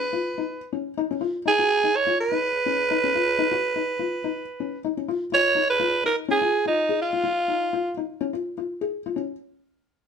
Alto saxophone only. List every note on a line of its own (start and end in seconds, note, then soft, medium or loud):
0.00 0.70 B4 medium
1.47 1.97 G#4 loud
1.96 2.19 C#5 loud
2.20 4.81 B4 loud
5.34 5.68 C#5 loud
5.70 6.02 B4 loud
6.06 6.16 A#4 medium
6.31 6.64 G#4 medium
6.67 6.99 D#4 medium
7.02 7.94 F4 medium